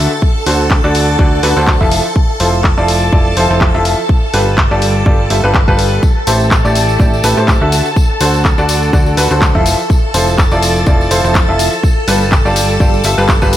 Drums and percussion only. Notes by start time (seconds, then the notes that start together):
0.22 kick
0.46 open hi-hat
0.71 kick, clap
0.95 open hi-hat
1.19 kick
1.43 open hi-hat
1.67 kick, clap
1.81 kick
1.92 open hi-hat
2.16 kick
2.40 open hi-hat
2.64 kick, clap
2.88 open hi-hat
3.13 kick
3.37 open hi-hat
3.61 kick, clap
3.85 open hi-hat
4.09 kick
4.34 open hi-hat
4.58 kick, clap
4.82 open hi-hat
5.06 kick
5.30 open hi-hat
5.54 kick, clap
5.68 kick
5.79 open hi-hat
6.03 kick, tambourine
6.27 open hi-hat, tambourine
6.40 tambourine
6.51 kick, clap, tambourine
6.65 tambourine
6.75 open hi-hat, tambourine
6.89 tambourine
7.00 kick, tambourine
7.14 tambourine
7.24 open hi-hat, tambourine
7.37 tambourine
7.48 kick, clap, tambourine
7.72 open hi-hat, tambourine
7.86 tambourine
7.96 kick, tambourine
8.20 open hi-hat, tambourine
8.34 tambourine
8.45 kick, clap, tambourine
8.58 tambourine
8.69 open hi-hat, tambourine
8.83 tambourine
8.93 kick, tambourine
9.06 tambourine
9.17 open hi-hat, tambourine
9.31 tambourine
9.42 kick, clap, tambourine
9.55 kick
9.66 open hi-hat, tambourine
9.79 tambourine
9.90 kick, tambourine
10.14 open hi-hat, tambourine
10.27 tambourine
10.38 kick, clap, tambourine
10.51 tambourine
10.63 open hi-hat, tambourine
10.76 tambourine
10.86 kick, tambourine
11.01 tambourine
11.11 open hi-hat, tambourine
11.25 tambourine
11.35 kick, clap, tambourine
11.59 open hi-hat, tambourine
11.73 tambourine
11.83 kick, tambourine
12.08 open hi-hat, tambourine
12.21 tambourine
12.32 kick, clap, tambourine
12.46 tambourine
12.56 open hi-hat, tambourine
12.70 tambourine
12.80 kick, tambourine
12.94 tambourine
13.04 open hi-hat, tambourine
13.18 tambourine
13.28 kick, clap, tambourine
13.42 kick, tambourine
13.53 open hi-hat, tambourine